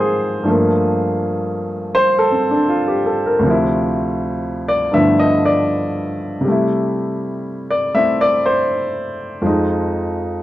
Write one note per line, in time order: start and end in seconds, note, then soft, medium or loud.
0.00 0.44 G#2 soft
0.00 0.45 D#3 soft
0.00 0.44 F3 soft
0.00 0.47 F#3 soft
0.00 0.47 A#3 soft
0.00 0.49 C4 soft
0.00 0.68 G#4 medium
0.00 0.48 C5 medium
0.43 3.42 G2 soft
0.43 3.43 F3 soft
0.43 3.44 A3 soft
0.49 3.45 A#3 medium
1.95 2.19 C5 medium
2.19 2.90 A4 medium
2.32 2.55 C4 soft
2.51 2.77 D4 soft
2.69 3.04 F4 medium
2.88 3.20 G4 soft
3.06 3.29 A4 medium
3.26 3.52 A#4 medium
3.39 4.91 D2 medium
3.39 4.93 C3 soft
3.46 4.92 F3 medium
3.50 4.95 E4 medium
4.68 4.93 D5 medium
4.91 6.44 G2 soft
4.91 6.44 D3 soft
4.91 6.45 F3 soft
4.91 6.45 A3 soft
4.91 5.18 E5 medium
4.95 6.46 B3 soft
4.95 6.46 E4 soft
5.20 5.44 D#5 medium
5.45 6.17 D5 medium
6.41 9.41 C3 soft
6.41 9.43 G3 soft
6.48 7.93 A3 soft
6.48 7.96 E4 medium
7.71 7.95 D5 medium
7.94 9.43 A3 soft
7.94 9.44 C4 soft
7.94 9.45 E4 soft
7.94 8.19 E5 medium
8.21 8.45 D5 medium
8.46 9.15 C5 medium
9.41 10.43 F2 soft
9.41 10.43 F3 soft
9.41 10.43 G#3 soft
9.46 10.43 D#4 medium